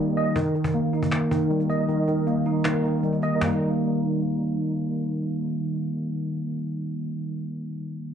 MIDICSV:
0, 0, Header, 1, 3, 480
1, 0, Start_track
1, 0, Key_signature, -3, "major"
1, 0, Tempo, 382166
1, 448, Time_signature, 4, 2, 24, 8
1, 10225, End_track
2, 0, Start_track
2, 0, Title_t, "Tine electric piano"
2, 0, Program_c, 0, 4
2, 0, Control_c, 0, 64, 127
2, 0, Note_on_c, 0, 51, 78
2, 0, Note_on_c, 0, 55, 87
2, 0, Note_on_c, 0, 58, 88
2, 0, Note_on_c, 0, 63, 90
2, 0, Note_on_c, 0, 75, 102
2, 209, Note_off_c, 0, 58, 0
2, 214, Note_off_c, 0, 75, 0
2, 214, Note_on_c, 0, 75, 99
2, 436, Note_off_c, 0, 51, 0
2, 450, Note_off_c, 0, 55, 0
2, 450, Note_off_c, 0, 63, 0
2, 451, Note_off_c, 0, 75, 0
2, 451, Note_on_c, 0, 51, 94
2, 466, Control_c, 0, 64, 0
2, 652, Control_c, 0, 64, 127
2, 679, Note_off_c, 0, 51, 0
2, 694, Note_on_c, 0, 51, 65
2, 931, Note_on_c, 0, 58, 91
2, 1170, Note_on_c, 0, 63, 80
2, 1395, Note_off_c, 0, 51, 0
2, 1410, Note_on_c, 0, 51, 86
2, 1635, Note_off_c, 0, 51, 0
2, 1650, Note_on_c, 0, 51, 81
2, 1892, Note_on_c, 0, 55, 86
2, 2129, Note_on_c, 0, 75, 84
2, 2130, Note_off_c, 0, 58, 0
2, 2350, Note_off_c, 0, 51, 0
2, 2365, Note_on_c, 0, 51, 84
2, 2370, Note_off_c, 0, 63, 0
2, 2594, Note_off_c, 0, 51, 0
2, 2609, Note_on_c, 0, 51, 81
2, 2850, Note_on_c, 0, 58, 84
2, 3090, Note_off_c, 0, 55, 0
2, 3090, Note_on_c, 0, 63, 84
2, 3315, Note_off_c, 0, 51, 0
2, 3329, Note_off_c, 0, 75, 0
2, 3330, Note_on_c, 0, 51, 91
2, 3553, Note_off_c, 0, 51, 0
2, 3568, Note_on_c, 0, 51, 73
2, 3807, Note_on_c, 0, 55, 76
2, 4049, Note_off_c, 0, 58, 0
2, 4057, Note_on_c, 0, 75, 96
2, 4198, Note_off_c, 0, 51, 0
2, 4213, Note_on_c, 0, 51, 79
2, 4249, Note_off_c, 0, 55, 0
2, 4264, Note_on_c, 0, 55, 73
2, 4289, Note_off_c, 0, 63, 0
2, 4293, Note_off_c, 0, 75, 0
2, 4304, Control_c, 0, 64, 0
2, 4314, Note_on_c, 0, 58, 74
2, 4364, Note_on_c, 0, 63, 87
2, 4503, Control_c, 0, 64, 127
2, 9281, Note_off_c, 0, 51, 0
2, 9331, Note_off_c, 0, 55, 0
2, 9381, Note_off_c, 0, 58, 0
2, 9431, Note_off_c, 0, 63, 0
2, 10225, End_track
3, 0, Start_track
3, 0, Title_t, "Cajon"
3, 449, Note_on_c, 9, 36, 110
3, 575, Note_off_c, 9, 36, 0
3, 690, Note_on_c, 9, 38, 45
3, 809, Note_on_c, 9, 36, 89
3, 816, Note_off_c, 9, 38, 0
3, 929, Note_on_c, 9, 38, 43
3, 934, Note_off_c, 9, 36, 0
3, 1055, Note_off_c, 9, 38, 0
3, 1169, Note_on_c, 9, 38, 39
3, 1288, Note_on_c, 9, 36, 94
3, 1295, Note_off_c, 9, 38, 0
3, 1400, Note_on_c, 9, 38, 86
3, 1409, Note_off_c, 9, 38, 0
3, 1409, Note_on_c, 9, 38, 107
3, 1414, Note_off_c, 9, 36, 0
3, 1534, Note_off_c, 9, 38, 0
3, 1650, Note_on_c, 9, 36, 83
3, 1775, Note_off_c, 9, 36, 0
3, 1889, Note_on_c, 9, 38, 36
3, 2009, Note_off_c, 9, 38, 0
3, 2009, Note_on_c, 9, 38, 38
3, 2128, Note_off_c, 9, 38, 0
3, 2128, Note_on_c, 9, 38, 43
3, 2253, Note_off_c, 9, 38, 0
3, 2370, Note_on_c, 9, 38, 46
3, 2495, Note_off_c, 9, 38, 0
3, 2610, Note_on_c, 9, 38, 46
3, 2735, Note_off_c, 9, 38, 0
3, 2849, Note_on_c, 9, 38, 42
3, 2974, Note_off_c, 9, 38, 0
3, 3089, Note_on_c, 9, 38, 39
3, 3214, Note_off_c, 9, 38, 0
3, 3320, Note_on_c, 9, 38, 84
3, 3328, Note_off_c, 9, 38, 0
3, 3328, Note_on_c, 9, 38, 105
3, 3454, Note_off_c, 9, 38, 0
3, 3570, Note_on_c, 9, 38, 40
3, 3696, Note_off_c, 9, 38, 0
3, 3809, Note_on_c, 9, 38, 34
3, 3929, Note_off_c, 9, 38, 0
3, 3929, Note_on_c, 9, 38, 36
3, 4047, Note_off_c, 9, 38, 0
3, 4047, Note_on_c, 9, 38, 44
3, 4173, Note_off_c, 9, 38, 0
3, 4289, Note_on_c, 9, 36, 100
3, 4289, Note_on_c, 9, 38, 102
3, 4414, Note_off_c, 9, 36, 0
3, 4414, Note_off_c, 9, 38, 0
3, 10225, End_track
0, 0, End_of_file